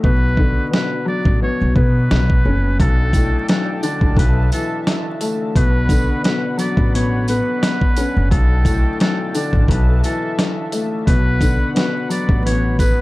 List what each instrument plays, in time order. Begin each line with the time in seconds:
0.04 upright bass B1, upright piano B2, muted trumpet B4, kick
0.37 upright piano D3, kick
0.71 upright piano B2, muted trumpet B4, snare
1.05 upright piano F#3, muted trumpet D5
1.25 upright bass A1, kick
1.42 upright piano B2, muted trumpet C#5
1.61 upright bass B1
1.76 upright bass B2, upright piano B3, muted trumpet B4, kick
2.11 upright bass B1, snare
2.30 kick
2.45 upright bass F#1, upright piano C#4
2.80 upright bass B1, upright piano B1, analog synth pad D4 A4 G5 A5, muted trumpet A4, kick, closed hi-hat
3.13 upright piano A2, kick, closed hi-hat, tambourine
3.48 upright piano B1, muted trumpet A4, snare, closed hi-hat
3.83 upright piano D3, muted trumpet D5, closed hi-hat, tambourine
4.01 upright bass A1, kick
4.16 upright bass B1, upright piano B1, analog synth pad D3 E5, muted trumpet B4, kick, closed hi-hat
4.52 upright piano E3, muted trumpet A4, closed hi-hat, tambourine
4.87 snare, closed hi-hat
5.21 upright piano A3, closed hi-hat, tambourine
5.56 upright bass B1, upright piano B2, analog synth pad B4 F#5 B5, muted trumpet B4, kick, closed hi-hat
5.89 upright piano D3, kick, closed hi-hat, tambourine
6.23 upright piano B2, muted trumpet B4, snare, closed hi-hat
6.57 upright piano F#3, muted trumpet D5, closed hi-hat, tambourine
6.77 upright bass A1, kick
6.94 upright piano B2, muted trumpet C#5, closed hi-hat
7.28 upright piano B3, muted trumpet B4, closed hi-hat, tambourine
7.63 snare, closed hi-hat
7.81 kick
7.97 upright piano C#4, closed hi-hat, tambourine
8.17 upright bass F#1
8.31 upright bass B1, upright piano B1, muted trumpet A4, analog synth pad A4 G5 A5, kick, closed hi-hat
8.65 upright piano A2, kick, closed hi-hat, tambourine
9.00 upright piano B1, muted trumpet A4, snare, closed hi-hat
9.35 upright piano D3, muted trumpet D5, closed hi-hat, tambourine
9.53 upright bass A1, kick
9.68 upright bass B1, upright piano B1, analog synth pad A4 E5, muted trumpet B4, kick, closed hi-hat
10.03 upright piano E3, muted trumpet A4, closed hi-hat, tambourine
10.39 snare, closed hi-hat
10.72 upright piano A3, closed hi-hat, tambourine
11.06 upright bass B1, upright piano B2, analog synth pad B4 F#5 B5, muted trumpet B4, kick, closed hi-hat
11.41 upright piano D3, kick, closed hi-hat, tambourine
11.75 upright piano B2, muted trumpet B4, snare, closed hi-hat
12.09 upright piano F#3, muted trumpet D5, closed hi-hat, tambourine
12.29 upright bass A1, kick
12.46 upright piano B2, muted trumpet C#5, closed hi-hat
12.79 upright piano B3, muted trumpet B4, kick, closed hi-hat, tambourine